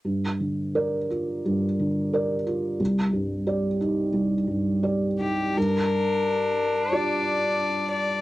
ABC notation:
X:1
M:4/4
L:1/8
Q:1/4=88
K:Gm
V:1 name="Violin"
z8 | z6 z G | B4 d3 d |]
V:2 name="Felt piano"
G,, D, [Bd] F G,, D, [Bd] F | C,, G,, [Gd] E C,, G,, [Gd] E | G,,4 [FGd]4 |]
V:3 name="Cello"
z8 | z8 | D8 |]